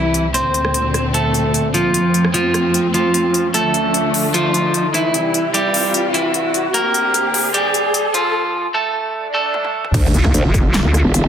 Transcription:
Already playing: string section C2 C3 G3 E4, clean electric guitar E3 E4, riser
0.14 closed hi-hat
0.34 string section D2 A#2 D3 C4, clean electric guitar C4 C5, closed hi-hat
0.54 closed hi-hat
0.65 cross-stick
0.74 closed hi-hat
0.94 cross-stick, closed hi-hat
1.14 clean electric guitar A3 A4, closed hi-hat
1.34 closed hi-hat
1.54 closed hi-hat
1.74 clean electric guitar F3 F4, closed hi-hat
1.94 string section F2 F3 A3 C4, closed hi-hat
2.14 closed hi-hat
2.25 cross-stick
2.34 clean electric guitar F3 F4, closed hi-hat
2.54 cross-stick, closed hi-hat
2.74 closed hi-hat
2.94 clean electric guitar F3 F4, closed hi-hat
3.14 closed hi-hat
3.34 closed hi-hat
3.54 string section D2 D3 A3, clean electric guitar A3 A4, closed hi-hat
3.74 closed hi-hat
3.94 closed hi-hat
4.14 open hi-hat
4.34 clean electric guitar F3 F4, closed hi-hat
4.54 closed hi-hat
4.74 closed hi-hat
4.94 clean electric guitar E3 E4, closed hi-hat
5.14 string section C2 C3 E3 G3, closed hi-hat
5.34 closed hi-hat
5.54 clean electric guitar G3 G4, closed hi-hat
5.74 open hi-hat
5.94 closed hi-hat
6.14 clean electric guitar E3 E4, closed hi-hat
6.34 closed hi-hat
6.54 closed hi-hat
6.74 string section D2 D3 A#3 C4, clean electric guitar A#3 A#4, closed hi-hat
6.94 closed hi-hat
7.14 closed hi-hat
7.34 open hi-hat
7.54 clean electric guitar G3 G4, closed hi-hat
7.74 closed hi-hat
7.94 closed hi-hat
8.14 clean electric guitar F3 F4, closed hi-hat
8.74 clean electric guitar A3 A4
9.14 swell
9.34 clean electric guitar A3 A4
9.54 high tom
9.65 high tom
9.85 mid tom
9.94 wobble bass D2, string section D3 A3 F4 E5, kick, closed hi-hat, crash, impact
10.14 wobble bass D2, closed hi-hat
10.24 kick, cross-stick
10.34 wobble bass D2, closed hi-hat
10.45 wobble bass F1
10.54 kick, cross-stick, closed hi-hat
10.74 snare, clap, closed hi-hat
10.85 wobble bass D2
10.94 cross-stick, closed hi-hat
11.05 wobble bass E1
11.14 closed hi-hat

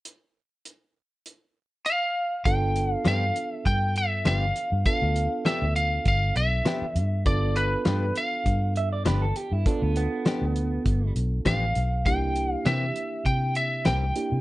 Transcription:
0.05 closed hi-hat
0.65 closed hi-hat
1.26 closed hi-hat
1.86 lead electric guitar F5, closed hi-hat
2.45 fingered electric bass G1, reed electric piano B3 D4 F4 A4, lead electric guitar G5, kick, closed hi-hat
2.76 closed hi-hat
2.93 lead electric guitar F5
3.05 fingered electric bass G2, clean electric guitar F3 B3 D4 G4, lead electric guitar F5, snare, closed hi-hat
3.36 closed hi-hat
3.52 lead electric guitar E5
3.66 fingered electric bass G2, lead electric guitar G5, kick, closed hi-hat
3.96 lead electric guitar E5, closed hi-hat
4.25 fingered electric bass G1, clean electric guitar F3 B3 D4 G4, lead electric guitar E5, snare, closed hi-hat
4.38 lead electric guitar F5
4.56 closed hi-hat
4.72 fingered electric bass G2
4.86 reed electric piano B3 D4 F4 A4, lead electric guitar F5, kick, closed hi-hat
5.02 fingered electric bass D2
5.16 closed hi-hat
5.45 clean electric guitar F3 B3 D4 G4, lead electric guitar E5, snare, closed hi-hat
5.62 fingered electric bass D2
5.76 lead electric guitar F5, closed hi-hat
6.05 fingered electric bass G1, lead electric guitar F5, kick, closed hi-hat
6.36 fingered electric bass B1, lead electric guitar E5, closed hi-hat
6.65 clean electric guitar F3 B3 D4 G4, snare, closed hi-hat
6.82 muted fingered electric bass stroke
6.95 fingered electric bass G2, closed hi-hat
7.26 fingered electric bass G1, reed electric piano B3 D4 F4 A4, lead electric guitar D5, kick, closed hi-hat
7.56 lead electric guitar B4, closed hi-hat
7.85 fingered electric bass G2, clean electric guitar F3 B3 D4 G4, snare, closed hi-hat
8.15 lead electric guitar F5, closed hi-hat
8.46 fingered electric bass G2, kick, closed hi-hat
8.76 clean electric guitar E5, closed hi-hat
8.93 clean electric guitar D5
9.06 fingered electric bass G1, clean electric guitar F3 B3 D4 G4 B4, snare, closed hi-hat
9.22 clean electric guitar A4
9.36 clean electric guitar G4, closed hi-hat
9.52 fingered electric bass G2, clean electric guitar E4
9.66 reed electric piano B3 D4 F4 A4, clean electric guitar D4, kick, closed hi-hat
9.82 fingered electric bass D2, clean electric guitar B3
9.96 clean electric guitar B3, closed hi-hat
10.26 clean electric guitar F3 B3 D4 G4, snare, closed hi-hat
10.42 fingered electric bass D2
10.56 closed hi-hat
10.86 fingered electric bass G1, kick, closed hi-hat
11.16 fingered electric bass B1, closed hi-hat
11.45 fingered electric bass A1, clean electric guitar F3 B3 D4 G4, lead electric guitar F5, kick, snare, closed hi-hat
11.75 fingered electric bass B1, closed hi-hat
12.06 fingered electric bass C2, reed electric piano A#3 D4 E4 G4, lead electric guitar G5, kick, closed hi-hat
12.36 closed hi-hat
12.53 lead electric guitar F5
12.66 fingered electric bass C3, clean electric guitar E3 A#3 C4 G4, lead electric guitar E5, snare, closed hi-hat
12.96 closed hi-hat
13.25 fingered electric bass C3, lead electric guitar G5, kick, closed hi-hat
13.55 lead electric guitar E5, closed hi-hat
13.85 fingered electric bass C2, clean electric guitar E3 A#3 C4 G4, lead electric guitar G5, snare, closed hi-hat
14.16 reed electric piano A#3 D4 E4 G4, closed hi-hat
14.32 fingered electric bass C3

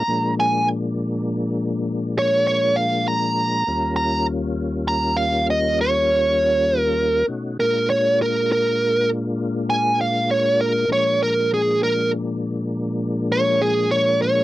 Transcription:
Already playing: lead electric guitar A#5
0.08 tonewheel organ A#2 F3 G#3 A#3 D4
0.40 lead electric guitar G#5
2.19 lead electric guitar C#5
2.47 lead electric guitar C#5
2.76 lead electric guitar F5
3.08 lead electric guitar A#5
3.67 tonewheel organ D#2 G3 A#3 C#4 F4
3.96 lead electric guitar A#5
4.88 lead electric guitar A#5
5.17 lead electric guitar F5
5.50 lead electric guitar D#5
5.81 lead electric guitar C#5
6.81 lead electric guitar A#4
7.27 tonewheel organ B2 A3 C#4 D#4 F#4
7.60 tonewheel organ A#2 G#3 A#3 D4 F4, lead electric guitar A#4
7.90 lead electric guitar C#5
8.22 lead electric guitar A#4
8.52 lead electric guitar A#4
9.70 lead electric guitar G#5
10.01 lead electric guitar F5
10.31 lead electric guitar C#5
10.61 lead electric guitar A#4
10.88 tonewheel organ A#2 F3 G#3 A#3 D4
10.92 lead electric guitar C#5
11.23 lead electric guitar A#4
11.54 lead electric guitar G#4
11.83 lead electric guitar A#4
13.32 lead electric guitar C#5
13.62 lead electric guitar G#4
13.91 lead electric guitar C#5
14.22 lead electric guitar C#5

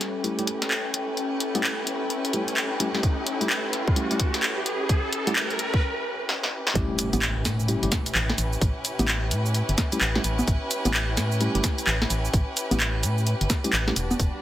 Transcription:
Already playing: analog synth pad G3 C#4 A4 G5, violin section C#4 E4 G4 B4, riser
0.01 snare, closed hi-hat
0.24 tine electric piano G3 A3 C#4 E4 G4, closed hi-hat
0.39 tine electric piano G3 A3 C#4 E4 G4, closed hi-hat
0.47 closed hi-hat
0.62 snare, closed hi-hat
0.71 clap
0.94 closed hi-hat
1.17 closed hi-hat
1.40 closed hi-hat
1.55 tine electric piano G3 A3 C#4 E4 G4, closed hi-hat, high conga
1.64 clap
1.87 closed hi-hat
2.10 closed hi-hat
2.25 closed hi-hat
2.33 tine electric piano G3 A3 C#4 E4 G4, closed hi-hat
2.48 closed hi-hat
2.57 clap
2.80 tine electric piano G3 A3 C#4 E4 G4, closed hi-hat
2.95 tine electric piano G3 A3 C#4 E4 G4, snare
3.03 kick, closed hi-hat
3.27 closed hi-hat
3.41 tine electric piano G3 A3 C#4 E4 G4, closed hi-hat
3.50 clap
3.73 snare, closed hi-hat
3.88 kick
3.96 tine electric piano G3 A3 C#4 E4 G4, closed hi-hat
4.11 tine electric piano G3 A3 C#4 E4 G4, closed hi-hat
4.20 kick, closed hi-hat
4.34 snare, closed hi-hat
4.43 clap
4.66 closed hi-hat
4.89 kick, closed hi-hat
5.13 closed hi-hat
5.27 tine electric piano G3 A3 C#4 E4 G4, closed hi-hat, high conga
5.36 clap
5.50 closed hi-hat
5.59 closed hi-hat
5.74 kick
6.29 snare
6.43 snare
6.52 violin section G4
6.67 snare
6.75 fm bass A1, tine electric piano G3 A3 C#4 E4 G4, violin section C#4 E4 G4 B4, kick, closed hi-hat, impact, shaker
6.99 closed hi-hat, shaker
7.13 fm bass A1, tine electric piano G3 A3 C#4 E4 G4, closed hi-hat, high conga, shaker
7.22 clap, shaker
7.45 fm bass A2, snare, closed hi-hat, shaker
7.60 shaker
7.68 tine electric piano G3 A3 C#4 E4 G4, closed hi-hat, shaker
7.83 fm bass G1, tine electric piano G3 A3 C#4 E4 G4, closed hi-hat
7.92 kick, snare, closed hi-hat, shaker
8.06 closed hi-hat, shaker
8.15 fm bass A1, clap, shaker
8.30 snare
8.38 fm bass A1, closed hi-hat, shaker
8.53 shaker
8.61 fm bass A1, kick, closed hi-hat, shaker
8.85 closed hi-hat, shaker
8.99 fm bass A1, tine electric piano G3 A3 C#4 E4 G4, closed hi-hat, high conga, shaker
9.08 clap, shaker
9.31 fm bass A2, closed hi-hat, shaker
9.46 shaker
9.54 closed hi-hat, shaker
9.69 fm bass G1, closed hi-hat
9.78 kick, snare, closed hi-hat, shaker
9.92 tine electric piano G3 A3 C#4 E4 G4, closed hi-hat, shaker
10.01 fm bass A1, clap, shaker
10.15 tine electric piano G3 A3 C#4 E4 G4, snare
10.24 fm bass A1, closed hi-hat, shaker
10.39 high conga, shaker
10.48 fm bass A1, kick, closed hi-hat, shaker
10.71 closed hi-hat, shaker
10.85 fm bass A1, tine electric piano G3 A3 C#4 E4 G4, closed hi-hat, high conga, shaker
10.94 clap, shaker
11.17 fm bass A2, snare, closed hi-hat, shaker
11.32 shaker
11.40 tine electric piano G3 A3 C#4 E4 G4, closed hi-hat, shaker
11.55 fm bass G1, tine electric piano G3 A3 C#4 E4 G4, closed hi-hat
11.64 kick, snare, closed hi-hat, shaker
11.78 closed hi-hat, shaker
11.87 fm bass A1, clap, shaker
12.02 snare
12.10 fm bass A1, closed hi-hat, shaker
12.25 shaker
12.33 fm bass A1, kick, closed hi-hat, shaker
12.57 closed hi-hat, shaker
12.71 fm bass A1, tine electric piano G3 A3 C#4 E4 G4, closed hi-hat, high conga, shaker
12.80 clap, shaker
13.03 fm bass A2, closed hi-hat, shaker
13.18 shaker
13.27 closed hi-hat, shaker
13.41 fm bass G1, closed hi-hat
13.50 kick, snare, closed hi-hat, shaker
13.64 tine electric piano G3 A3 C#4 E4 G4, closed hi-hat, shaker
13.73 fm bass A1, clap, shaker
13.87 tine electric piano G3 A3 C#4 E4 G4, snare
13.96 fm bass E1, analog synth pad D4, violin section D4 F#4, closed hi-hat, shaker
14.11 analog synth pad G3, high conga, shaker
14.20 fm bass E1, kick, closed hi-hat, shaker
14.30 analog synth pad F#5

